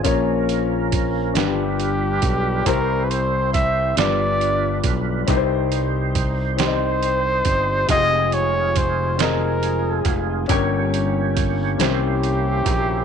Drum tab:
HH |xxxxxx|xxxxxx|xxxxxx|xxxxxx|
SD |---o--|---o--|---o--|---o--|
BD |o-o--o|o-o--o|o-o--o|o-o--o|

HH |xxxxxx|
SD |---o--|
BD |o-o--o|